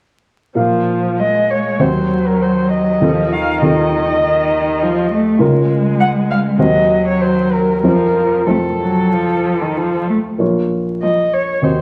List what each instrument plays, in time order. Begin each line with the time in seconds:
0.55 grand piano A#2 A#3 F4 F5, cello F3
1.19 cello G#3, violin D#5
1.51 violin C#5
1.79 grand piano D#2 C4 F#4 C5, cello F#3, violin C5
2.28 violin A#4
2.42 violin C5
2.73 violin D#5
3.01 grand piano D#2 C4 F4 A4, cello F3
3.32 cello D#3, violin F5
3.62 grand piano D#2 C4 F4 A4, violin D#5
4.23 cello D#3
4.83 cello F3
5.12 cello A3
5.39 grand piano C#2 C#4 F4 A#4, cello G#3
6.00 violin F#5
6.31 violin F5
6.58 grand piano D#2 C4 F#4 C5, cello F#3, violin D#5
7.08 violin C#5
7.21 violin C5
7.53 violin A#4
7.83 grand piano F2 C4 F4 C5, cello F3, violin A#4
8.46 grand piano F2 C4 F4 C5, cello A3, violin A4
8.81 cello F#3
9.13 cello F3
9.62 cello D#3
9.77 cello F3
10.09 cello A3
10.38 grand piano A#1 A#3 F4 C#5
11.03 cello F3, violin D#5
11.34 violin C#5
11.62 grand piano D#2 C4 F#4 D#5, violin C5